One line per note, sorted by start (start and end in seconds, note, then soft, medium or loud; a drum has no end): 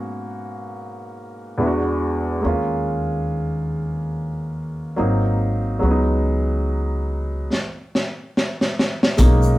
0.00 1.53 G#2 medium
0.00 1.54 A#3 medium
0.00 1.54 B3 soft
0.00 1.55 C#4 soft
0.00 1.55 F#4 medium
1.58 2.42 E2 medium
1.58 2.40 G#3 soft
1.58 2.43 B3 soft
1.58 2.43 D4 soft
1.58 1.67 E4 soft
1.67 2.47 F#4 medium
2.41 4.93 D#2 medium
2.41 4.92 G#3 medium
2.41 4.92 A#3 medium
2.41 4.93 C#4 medium
2.46 4.94 F4 medium
4.96 5.77 G#1 medium
4.96 5.78 F#3 medium
4.96 5.81 A#3 medium
4.96 5.81 C4 soft
4.96 5.82 D#4 medium
5.79 7.47 C#2 medium
5.79 7.46 F#3 medium
5.79 7.46 G#3 soft
5.79 7.47 B3 medium
5.84 5.90 C#4 soft
5.91 7.51 D#4 medium
7.53 snare soft
7.95 snare medium
8.37 snare medium
8.61 snare medium
8.79 snare medium
9.03 snare medium
9.17 9.58 B1 loud
9.17 9.58 G#3 medium
9.17 9.58 A#3 medium
9.17 9.58 C#4 medium
9.17 kick loud
9.17 closed hi-hat medium
9.17 shaker medium
9.22 9.58 D#4 medium
9.42 shaker soft